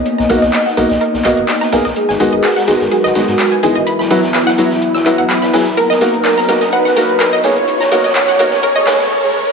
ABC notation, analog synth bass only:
X:1
M:4/4
L:1/16
Q:1/4=126
K:B
V:1 name="Analog synth bass" clef=bass
z B,,, B,,, B,,, z2 B,,, B,,, z B,,, B,,, F,,, z2 B,,, B,,, | z G,,, G,,, G,,, z2 G,,, G,,, z G,,, G,,, G,, z2 G,,, G,,, | z E,,, E,,, E,,, z2 E,,, E,,, z E,,, E,,, E,, z2 E,,, E,,, | z B,,, B,,, B,,, z2 B,,, B,,, z B,,, B,,, F,,, z2 B,,, B,,, |
z B,,, B,,, B,,, z2 B,,, B,,, z B,,, B,,, F,,, z4 |]